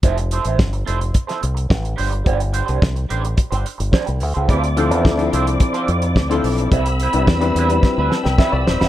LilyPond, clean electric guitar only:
\new Staff \with { instrumentName = "Clean electric guitar" } { \time 4/4 \key f \lydian \tempo 4 = 108 <c' e' a' c''>16 r16 <c' e' a' c''>16 <c' e' a' c''>16 r8 <c' e' a' c''>16 r8 <c' e' a' c''>16 r4 <g d' g' c''>16 r16 | <g d' g' c''>16 r16 <g d' g' c''>16 <g d' g' c''>16 r8 <g d' g' c''>16 r8 <g d' g' c''>16 r8 <g d' g' c''>16 r8 <c' f' a' c''>16 | <c' f' a' c''>16 r16 <c' f' a' c''>16 <c' f' a' c''>16 r8 <c' f' a' c''>16 r8 <c' f' a' c''>16 r8. <c' f' a' c''>16 r8 | <g c' e' b'>16 r16 <g c' e' b'>16 <g c' e' b'>16 r8 <g c' e' b'>16 r8 <g c' e' b'>16 r8 <g c' e' b'>16 r8 <g c' e' b'>16 | }